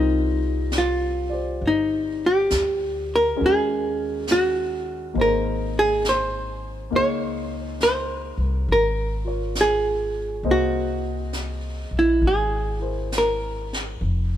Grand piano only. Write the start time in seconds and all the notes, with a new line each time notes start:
Already playing: G3 C4 F4 A#4
1.30 G4 C5 D5
3.36 G#3 C#4 F#4
3.41 A#4
5.14 A#3 D#4 G#4
5.18 C5
6.90 A#3 D#4 G#4
9.25 F4 A#4 C#5
10.44 A#3 G#4 C5 D#5
12.79 E4 A#4 C5